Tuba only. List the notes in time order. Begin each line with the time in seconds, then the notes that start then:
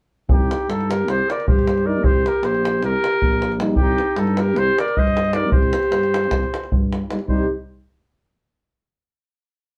0.29 C2
0.69 G2
1.08 C2
1.48 G2
2.03 C2
2.42 A#1
2.83 C2
3.22 A#1
3.77 C2
4.17 G2
4.58 C2
4.97 G2
5.52 C2
5.92 G2
6.32 C2
6.72 G2
7.28 C2